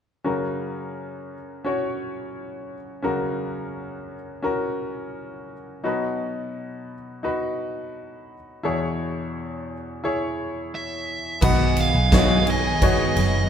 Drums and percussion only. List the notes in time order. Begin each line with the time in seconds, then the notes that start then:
11.42 kick, crash
11.77 ride
12.12 kick, snare, ride
12.47 ride
12.82 kick, ride
13.17 ride